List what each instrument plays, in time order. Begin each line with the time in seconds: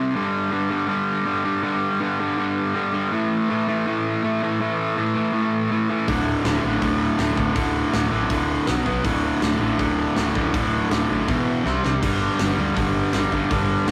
Already playing: overdriven electric guitar C3 G3 C4
0.15 overdriven electric guitar G2 D3 G3
0.51 overdriven electric guitar G2 D3 G3
0.70 overdriven electric guitar G2 D3 G3
0.88 overdriven electric guitar G2 D3 G3
1.26 overdriven electric guitar G2 D3 G3
1.44 overdriven electric guitar G2 D3 G3
1.63 overdriven electric guitar G2 D3 G3
2.00 overdriven electric guitar G2 D3 G3
2.19 overdriven electric guitar G2 D3 G3
2.37 overdriven electric guitar G2 D3 G3
2.75 overdriven electric guitar G2 D3 G3
2.93 overdriven electric guitar G2 D3 G3
3.12 overdriven electric guitar A2 E3 A3
3.49 overdriven electric guitar A2 E3 A3
3.68 overdriven electric guitar A2 E3 A3
3.87 overdriven electric guitar A2 E3 A3
4.24 overdriven electric guitar A2 E3 A3
4.42 overdriven electric guitar A2 E3 A3
4.60 overdriven electric guitar A2 E3 A3
4.97 overdriven electric guitar A2 E3 A3
5.15 overdriven electric guitar A2 E3 A3
5.33 overdriven electric guitar A2 E3 A3
5.71 overdriven electric guitar A2 E3 A3
5.90 overdriven electric guitar A2 E3 A3
6.08 picked electric bass D1, overdriven electric guitar D2 A2 D3, kick, open hi-hat
6.44 picked electric bass D1, overdriven electric guitar D2 A2 D3, snare, open hi-hat
6.63 picked electric bass A1, overdriven electric guitar D2 A2 D3
6.81 overdriven electric guitar D2 A2 D3, kick, open hi-hat
7.18 picked electric bass D1, overdriven electric guitar D2 A2 D3, snare, open hi-hat
7.37 picked electric bass D1, overdriven electric guitar D2 A2 D3, kick
7.55 picked electric bass D1, overdriven electric guitar D2 A2 D3, kick, open hi-hat
7.93 picked electric bass D1, overdriven electric guitar D2 A2 D3, snare, open hi-hat
8.11 picked electric bass A1, overdriven electric guitar D2 A2 D3
8.30 picked electric bass D1, overdriven electric guitar D2 A2 D3, kick, open hi-hat
8.67 picked electric bass B1, overdriven electric guitar B2 F#3 B3, snare, open hi-hat
8.86 picked electric bass B1, overdriven electric guitar B2 F#3 B3, kick
9.04 picked electric bass D1, overdriven electric guitar D2 A2 D3, kick, open hi-hat
9.42 picked electric bass D1, overdriven electric guitar D2 A2 D3, snare, open hi-hat
9.60 picked electric bass A1, overdriven electric guitar D2 A2 D3
9.79 picked electric bass D1, overdriven electric guitar D2 A2 D3, kick, open hi-hat
10.16 picked electric bass D1, overdriven electric guitar D2 A2 D3, snare, open hi-hat
10.35 picked electric bass D1, overdriven electric guitar D2 A2 D3, kick
10.54 picked electric bass D1, overdriven electric guitar D2 A2 D3, kick, open hi-hat
10.91 picked electric bass D1, overdriven electric guitar D2 A2 D3, snare, open hi-hat
11.10 picked electric bass A1, overdriven electric guitar D2 A2 D3
11.28 picked electric bass E1, overdriven electric guitar E2 B2 E3, kick, open hi-hat
11.66 picked electric bass C2, overdriven electric guitar C3 G3 C4, snare
11.84 picked electric bass C2, overdriven electric guitar C3 G3 C4, snare
12.03 picked electric bass G1, overdriven electric guitar G2 D3 G3, kick, open hi-hat, crash
12.39 picked electric bass G1, overdriven electric guitar G2 D3 G3, snare, open hi-hat
12.57 picked electric bass D2, overdriven electric guitar G2 D3 G3
12.76 picked electric bass G1, overdriven electric guitar G2 D3 G3, kick, open hi-hat
13.13 picked electric bass G1, overdriven electric guitar G2 D3 G3, snare, open hi-hat
13.32 picked electric bass G1, overdriven electric guitar G2 D3 G3, kick
13.51 picked electric bass G1, overdriven electric guitar G2 D3 G3, kick, open hi-hat
13.87 picked electric bass G1, overdriven electric guitar G2, distorted electric guitar D3, snare, open hi-hat